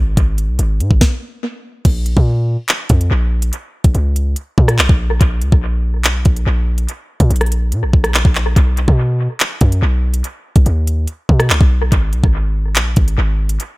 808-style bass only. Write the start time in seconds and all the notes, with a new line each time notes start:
Already playing: G#1
0.17 G#1
0.49 B1
0.59 G#1
0.80 G#2
0.91 G#1
1.85 A#1
2.17 A#2
2.90 F2
3.11 A#1
3.84 A#1
3.95 C#2
4.58 A#2
4.79 B1
4.89 A#1
5.21 A#1
5.42 C#2
5.52 A#1
6.05 B1
6.26 A#1
6.47 A#1
7.20 A#2
7.30 A#1
7.72 A#2
7.83 A#1
7.93 A#1
8.25 A#1
8.56 B1
8.88 B2
9.61 F#2
9.82 B1
10.56 B1
10.66 D#2
11.29 B2
11.50 C#2
11.61 B1
11.92 G#1
12.13 B1
12.24 G#1
12.76 A#1
12.97 G#1
13.18 G#1